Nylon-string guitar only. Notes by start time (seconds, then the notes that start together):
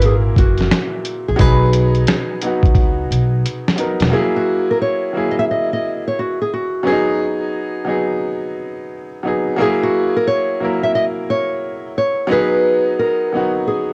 0.05 G#4
0.39 F#4
1.28 G#4
1.40 B4
4.13 G#4
4.36 F#4
4.71 A#4
4.82 C#5
5.31 D#5
5.39 E5
5.51 D#5
5.73 D#5
6.08 C#5
6.19 F#4
6.41 G#4
6.53 F#4
9.61 G#4
9.83 F#4
10.17 A#4
10.27 C#5
10.83 E5
10.95 D#5
11.30 C#5
11.98 C#5
12.32 B4
12.99 A#4
13.68 G#4